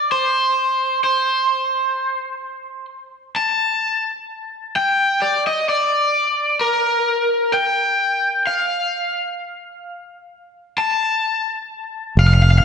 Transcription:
0.00 0.11 D5 medium
0.12 1.00 C5 medium
1.04 2.85 C5 soft
3.36 4.76 A5 medium
4.76 5.23 G5 medium
5.22 5.43 D5 medium
5.47 5.69 D#5 medium
5.69 6.57 D5 medium
6.61 7.56 A#4 medium
7.53 8.42 G5 medium
8.47 11.21 F5 soft
10.78 12.19 A5 medium
12.17 12.60 F1 medium
12.17 12.26 F5 medium
12.27 12.33 F5 medium
12.34 12.41 F5 medium
12.42 12.50 F5 medium
12.51 12.58 F5 medium
12.58 12.65 F5 medium

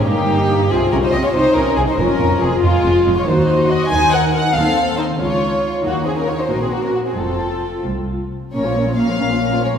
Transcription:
0.06 0.70 G1 medium
0.06 0.70 G2 medium
0.06 0.70 A#3 medium
0.06 0.71 D#4 medium
0.06 0.70 G4 medium
0.71 0.79 C2 medium
0.71 0.79 C3 medium
0.71 0.92 C4 medium
0.71 1.35 F4 medium
0.71 0.92 G#4 medium
0.92 1.00 C2 medium
0.92 1.01 C3 medium
0.92 1.03 C#4 medium
0.92 0.96 A#4 medium
1.03 1.07 D#4 medium
1.03 1.13 C5 medium
1.12 1.21 C2 medium
1.12 1.22 C3 soft
1.12 1.17 G4 medium
1.12 1.24 D#5 medium
1.23 1.27 F4 medium
1.23 1.35 C#5 medium
1.34 1.43 C2 medium
1.34 1.43 C3 medium
1.34 1.55 D#4 medium
1.34 2.00 D#4 medium
1.34 1.56 C5 medium
1.56 1.64 C2 medium
1.56 1.65 C3 medium
1.56 1.78 C#4 medium
1.56 1.77 A#4 medium
1.77 1.86 C2 medium
1.77 1.86 C3 medium
1.77 1.89 C4 medium
1.77 1.82 G#4 medium
1.88 1.93 D#4 medium
1.88 1.99 C5 medium
1.99 2.07 F1 medium
1.99 2.07 F2 medium
1.99 2.42 C#4 medium
1.99 3.25 F4 medium
1.99 2.42 A#4 medium
2.21 2.29 F1 medium
2.21 2.29 F2 medium
2.42 2.50 F1 medium
2.42 2.50 F2 soft
2.42 2.64 C4 medium
2.42 2.63 G#4 medium
2.62 2.72 F1 medium
2.62 2.71 F2 medium
2.62 3.15 G#3 medium
2.62 3.15 F4 medium
2.85 2.93 F1 medium
2.85 2.93 F2 medium
3.06 3.15 F1 medium
3.06 3.14 F2 medium
3.16 3.21 F4 medium
3.16 3.27 C#5 medium
3.26 3.78 D#2 medium
3.26 3.78 D#3 medium
3.26 3.70 D#4 medium
3.26 3.92 F#4 medium
3.26 3.70 C5 medium
3.70 3.91 F#4 medium
3.70 3.91 D#5 medium
3.90 4.43 D#2 medium
3.90 4.42 D#3 medium
3.90 4.54 D#4 medium
3.90 4.13 C5 medium
3.90 4.12 G#5 medium
4.13 4.33 A#4 medium
4.13 4.34 F#5 medium
4.34 4.42 A#4 medium
4.34 4.55 F#5 medium
4.55 5.06 D#2 medium
4.55 5.06 D#3 medium
4.55 5.18 C4 medium
4.55 4.97 A4 medium
4.55 4.98 F5 medium
4.97 5.06 D#4 medium
4.97 5.05 C5 medium
5.19 5.71 C#2 medium
5.19 5.71 C#3 medium
5.19 5.72 F4 medium
5.19 5.28 F4 medium
5.19 5.72 C#5 medium
5.42 5.63 D#4 soft
5.63 5.85 F4 medium
5.84 6.36 D#2 medium
5.84 6.36 D#3 medium
5.84 6.05 A#3 medium
5.84 6.50 D#4 medium
5.84 6.05 F#4 medium
6.06 6.17 C4 soft
6.06 6.17 G#4 medium
6.16 6.21 C#4 soft
6.16 6.28 A#4 medium
6.28 6.32 F4 soft
6.28 6.39 C#5 medium
6.39 6.43 D#4 soft
6.39 6.51 C5 soft
6.49 7.04 A#1 medium
6.49 7.03 A#2 medium
6.49 6.61 D#4 medium
6.49 7.18 F#4 soft
6.49 6.61 A#4 medium
6.62 6.73 C4 soft
6.62 6.73 G#4 soft
6.72 6.84 A#3 soft
6.72 6.84 F#4 medium
6.83 6.95 C#4 soft
6.83 6.95 A#4 soft
6.93 7.05 A#3 soft
6.93 7.00 F#4 soft
7.04 7.14 C4 soft
7.04 7.18 G#4 soft
7.16 7.72 F1 soft
7.16 7.71 F2 soft
7.16 7.83 C4 soft
7.16 8.18 F4 soft
7.16 7.86 A4 soft
7.85 8.40 C2 soft
8.53 9.12 A#1 soft
8.53 9.12 A#2 soft
8.53 8.64 A#3 soft
8.53 8.64 C#4 soft
8.53 8.64 A#4 soft
8.53 8.95 C#5 medium
8.65 8.76 F3 soft
8.65 8.74 A#3 soft
8.65 8.76 F4 soft
8.65 8.76 C#5 soft
8.75 8.85 A#3 soft
8.75 8.87 C#4 soft
8.75 8.87 A#4 soft
8.87 8.98 F3 soft
8.87 8.96 A#3 soft
8.87 8.98 F4 soft
8.87 8.98 C#5 soft
8.98 9.07 A#3 soft
8.98 9.08 C#4 soft
8.98 9.08 A#4 soft
8.98 9.62 F5 medium
9.09 9.20 F3 soft
9.09 9.19 A#3 soft
9.09 9.20 F4 soft
9.09 9.20 C#5 soft
9.20 9.77 A#1 soft
9.20 9.78 A#2 soft
9.20 9.30 A#3 soft
9.20 9.31 C#4 soft
9.20 9.31 A#4 soft
9.31 9.42 F3 soft
9.31 9.41 A#3 soft
9.31 9.43 F4 soft
9.31 9.42 C#5 soft
9.42 9.52 A#3 soft
9.42 9.52 C#4 soft
9.42 9.53 C#4 soft
9.42 9.52 A#4 soft
9.53 9.64 F3 soft
9.53 9.63 A#3 soft
9.53 9.64 F4 soft
9.53 9.64 C#5 soft
9.63 9.74 A#3 soft
9.63 9.74 C#4 soft
9.63 9.75 C#4 soft
9.63 9.74 A#4 soft
9.63 9.73 C#5 soft
9.74 9.78 A#3 soft
9.74 9.78 F4 soft
9.74 9.78 C#5 soft

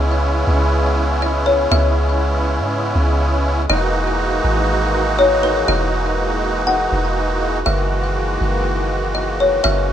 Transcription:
0.00 0.44 C#2 loud
0.00 3.66 C#3 medium
0.00 9.93 G#3 medium
0.00 3.66 B3 medium
0.00 3.66 C#4 medium
0.00 3.66 E4 medium
0.00 1.18 E5 loud
0.47 1.67 C#2 loud
1.22 1.46 D#5 medium
1.46 1.70 C#5 medium
1.71 2.60 C#2 loud
1.71 3.66 E5 loud
2.58 2.93 G#2 loud
2.95 3.67 C#2 loud
3.70 4.41 E1 loud
3.70 9.93 E3 medium
3.70 7.63 A#3 medium
3.70 7.63 D#4 medium
3.70 9.93 F#4 medium
3.70 5.14 D#5 loud
4.44 5.64 G#1 loud
5.19 5.42 C#5 medium
5.43 5.67 B4 medium
5.68 6.88 E1 loud
5.68 6.63 D#5 loud
6.67 7.62 F#5 medium
6.92 7.63 E1 loud
7.66 8.38 F#1 loud
7.66 9.63 D#3 medium
7.66 9.93 A#3 medium
7.66 9.11 E5 loud
8.41 9.61 F#1 loud
9.15 9.38 D#5 medium
9.40 9.64 C#5 medium
9.64 9.93 F#1 loud
9.64 9.93 C#4 medium
9.64 9.93 E5 loud

